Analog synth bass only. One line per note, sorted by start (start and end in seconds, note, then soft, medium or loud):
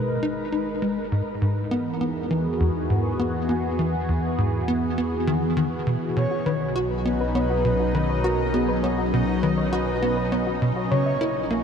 0.00 0.18 B2 medium
0.23 0.48 D#4 loud
0.52 0.69 D#4 medium
0.82 0.99 G#3 medium
1.12 1.22 G#2 medium
1.42 1.67 G#2 medium
1.71 1.96 B3 loud
2.01 2.18 B3 medium
2.31 2.47 E3 medium
2.60 2.70 E2 medium
2.90 3.15 G#2 medium
3.20 3.45 B3 loud
3.49 3.66 B3 medium
3.79 3.96 E3 medium
4.09 4.19 E2 medium
4.38 4.64 G#2 medium
4.68 4.93 B3 loud
4.98 5.15 B3 medium
5.27 5.44 D#3 loud
5.57 5.67 D#3 loud
5.87 5.97 B2 medium
6.16 6.27 B2 medium
6.46 6.71 D#3 medium
6.76 7.01 F#4 loud
7.05 7.22 B3 medium
7.35 7.52 B3 medium
7.65 7.75 B2 medium
7.95 8.20 D#3 medium
8.24 8.50 F#4 loud
8.54 8.71 B3 medium
8.84 9.01 B3 medium
9.14 9.24 B2 medium
9.43 9.68 D#3 medium
9.73 9.98 F#4 loud
10.02 10.19 B3 medium
10.32 10.49 B3 medium
10.62 10.72 B2 medium
10.91 11.17 C#3 medium
11.21 11.46 E4 loud
11.51 11.63 A#3 medium